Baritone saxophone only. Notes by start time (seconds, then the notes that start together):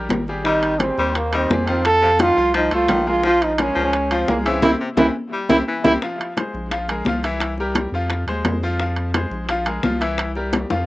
0.46 G3
0.99 G3
1.33 G3
1.66 D#3
2.02 C3
2.21 D#3
2.54 F3
2.89 D#3
3.24 F3
3.75 F3
4.12 F3
4.45 C#3
4.80 C3
4.98 E3
5.33 G3
5.68 E3